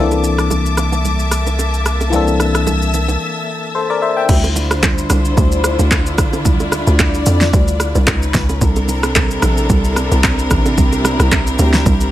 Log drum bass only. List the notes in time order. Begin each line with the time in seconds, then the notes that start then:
4.29 D2
5.10 C2
5.37 D2
5.79 D2
6.18 A1
6.45 D2
6.87 D2
7.26 F2
7.53 D2
7.95 C2
8.07 C#2
8.34 C#2
8.61 C2
9.43 A#1
9.70 C2
10.11 C2
10.51 A1
10.78 C2
11.19 C2
11.59 D2
11.86 C2